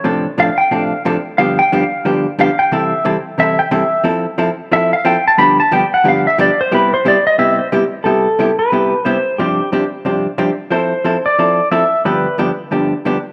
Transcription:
X:1
M:4/4
L:1/16
Q:"Swing" 1/4=180
K:C
V:1 name="Pedal steel guitar"
z4 f2 g2 f4 z4 | f2 g2 f4 z4 f2 g2 | e4 z4 e2 g2 e4 | z8 e2 f2 g2 a2 |
b2 a2 g2 ^f2 =f2 e2 d2 c2 | B2 c2 d2 _e2 =e2 c2 z4 | A6 B6 c4 | G4 z12 |
c6 d6 e4 | B4 z12 |]
V:2 name="Hollow-body jazz guitar"
[A,,C,F,CDA]2 z2 [A,,C,F,CDA] z3 [A,,C,F,CDA]2 z2 [A,,C,F,CDA] z3 | [G,,D,F,B,DG]2 z2 [G,,D,F,B,DG] z3 [G,,D,F,B,DG]2 z2 [G,,D,F,B,DG] z3 | [C,E,G,CEA]2 z2 [C,E,G,CEA] z3 [C,E,G,CEA]2 z2 [C,E,G,CEA] z3 | [F,CEA]2 z2 [F,CEA] z3 [F,CEA]2 z2 [F,CEA] z3 |
[G,,D,F,B,DG]2 z2 [G,,D,F,B,DG] z3 [G,,D,F,B,DG]2 z2 [G,,D,F,B,DG] z3 | [C,G,B,EG]2 z2 [C,G,B,EG] z3 [C,G,B,EG]2 z2 [C,G,B,EG] z3 | [C,G,B,EG]2 z2 [C,G,B,EG] z3 [C,G,B,EG]2 z2 [C,G,B,EG] z3 | [G,,C,F,CDG]2 z2 [G,,C,F,CDG] z3 [G,,C,F,CDG]2 z2 [G,,C,F,CDG] z3 |
[F,CEA]2 z2 [F,CEA] z3 [F,CEA]2 z2 [F,CEA] z3 | [G,,D,F,B,DG]2 z2 [G,,D,F,B,DG] z3 [G,,D,F,B,DG]2 z2 [G,,D,F,B,DG] z3 |]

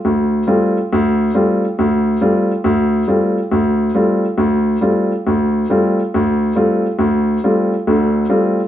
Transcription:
X:1
M:4/4
L:1/8
Q:"Swing" 1/4=138
K:Cmix
V:1 name="Grand piano"
D,,2 [G,A,CF] z D,,2 [G,A,CF] z | D,,2 [G,A,CF] z D,,2 [G,A,CF] z | D,,2 [G,A,CF] z D,,2 [G,A,CF] z | D,,2 [G,A,CF] z D,,2 [G,A,CF] z |
D,,2 [G,A,CF] z [D,,D,]2 [G,A,CF] z |]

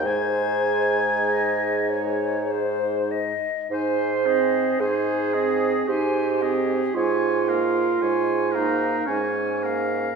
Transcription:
X:1
M:3/4
L:1/16
Q:1/4=55
K:Ab
V:1 name="Flute"
c4 e2 d2 c2 e2 | a2 e2 a2 e2 a2 e2 | a2 f2 a2 f2 a2 f2 |]
V:2 name="Oboe"
a8 z4 | c2 A2 c2 A2 c2 A2 | d2 B2 d2 B2 d2 B2 |]
V:3 name="Clarinet"
E8- E2 z2 | c4 A4 G4 | F6 E2 D3 z |]
V:4 name="French horn"
A,8- A,2 z2 | E2 C2 E2 C2 E2 C2 | A,2 B,2 A,2 B,2 A,2 B,2 |]
V:5 name="Bassoon" clef=bass
A,,8- A,,2 z2 | A,,4 A,,4 A,,4 | A,,4 A,,4 A,,4 |]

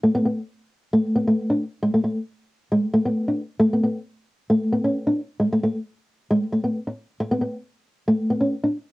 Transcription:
X:1
M:4/4
L:1/16
Q:1/4=134
K:Dlyd
V:1 name="Nylon-string guitar"
A, B, B,2 z4 A,2 B, A,2 D2 z | G, A, A,2 z4 G,2 A, B,2 D2 z | A, B, B,2 z4 A,2 B, C2 D2 z | G, A, A,2 z4 G,2 A, B,2 z3 |
z B, B,2 z4 A,2 B, C2 D2 z |]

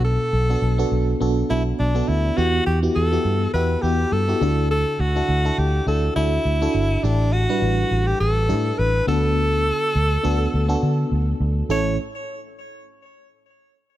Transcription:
X:1
M:4/4
L:1/16
Q:"Swing 16ths" 1/4=103
K:D
V:1 name="Alto saxophone"
A8 z2 E2 D2 E2 | F2 G2 A4 B2 G2 A4 | A2 F4 G2 A2 E6 | D2 F4- F G A4 B2 A2- |
A12- A2 z2 | c2 z12 z2 |]
V:2 name="FM electric piano"
[B,DFA]2 z [B,DFA] z [B,DFA]2 z [B,DFA] z [B,DFA]2 z [B,DFA]2 z | [B,EFG]2 z [B,EFG] z [B,EFG]2 z [B,EFG] z [B,EFG]2 z [B,EFG] [DEFA]2- | [DEFA]2 z [DEFA] z [DEFA]2 z [DEFA] z [DEFA]2 z [DEFA]2 z | [DEGA]2 z [G,DEB]4 z3 [DEGA]4 [B,DFA]2- |
[B,DFA]4 z2 [B,DFA]2 z [B,DFA]4 z3 | [A,CEA]2 z12 z2 |]
V:3 name="FM electric piano" clef=bass
B,,4 z12 | E,6 z8 D,2- | D,4 z12 | A,,6 z8 D,2- |
D,4 z12 | A,,,2 z12 z2 |]
V:4 name="Fingered electric bass" clef=bass
B,,,2 B,,,2 B,,,2 B,,,2 B,,,2 B,,,2 B,,,2 D,,2 | E,,2 E,,2 E,,2 G,,2 E,,2 E,,2 G,,2 D,,2- | D,,2 D,,2 D,,2 D,,2 D,,2 D,,2 D,,2 G,,,2 | A,,,4 A,,,2 A,,,2 A,,,2 A,,2 A,,,2 D,,2- |
D,,4 D,,2 D,,2 D,,2 D,2 D,,2 D,,2 | A,,,2 z12 z2 |]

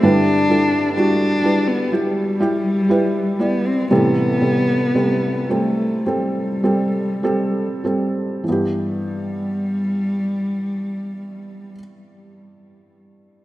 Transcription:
X:1
M:4/4
L:1/16
Q:1/4=53
K:G
V:1 name="Felt piano"
[G,EB]2 [G,EA]2 [G,EF]2 [G,EB]2 [G,EG]2 [G,EG]2 [G,EB]2 [G,Ed]2 | [C,G,A]2 [C,G,A]2 [C,G,A]2 [G,CA]2 [G,CA]2 [G,CA]2 [G,CA]2 [G,CA]2 | [E,B,G]16 |]
V:2 name="Felt piano" clef=bass
[G,,D,]16 | [A,,E,]16 | G,,16 |]
V:3 name="Cello"
D4 D3 B, G,6 B, C | B,6 A,2 G,6 z2 | G,16 |]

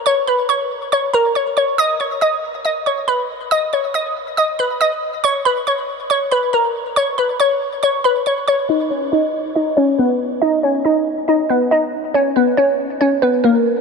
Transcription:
X:1
M:4/4
L:1/8
Q:1/4=139
K:B
V:1 name="Synth pluck"
[cc'] [Bb] [cc']2 [cc'] [Aa] [cc'] [cc'] | [dd'] [cc'] [dd']2 [dd'] [cc'] [Bb]2 | [dd'] [cc'] [dd']2 [dd'] [Bb] [dd']2 | [cc'] [Bb] [cc']2 [cc'] [Bb] [Aa]2 |
[cc'] [Bb] [cc']2 [cc'] [Bb] [cc'] [cc'] | [Dd] [Cc] [Dd]2 [Dd] [Cc] [B,B]2 | [Dd] [Cc] [Dd]2 [Dd] [B,B] [Dd]2 | [Cc] [B,B] [Cc]2 [Cc] [B,B] [A,A]2 |]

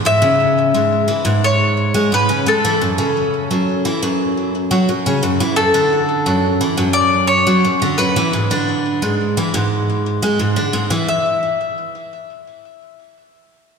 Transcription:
X:1
M:4/4
L:1/16
Q:1/4=87
K:Emix
V:1 name="Mandolin"
e8 c4 B2 A2- | A8- A2 z6 | A8 d2 c4 B2- | B6 z8 z2 |
e16 |]
V:2 name="Twelve-string acoustic guitar" clef=bass
G,, C,3 G,,2 E, G,,4 G, G,, C, G,, E, | F,, C,3 F,,2 E, F,,4 F, F,, C, F,, E, | F,, D,3 F,,2 E, F,,4 F, F,, D, F,, E, | G,, D,3 G,,2 E, G,,4 G, G,, D, G,, E, |
z16 |]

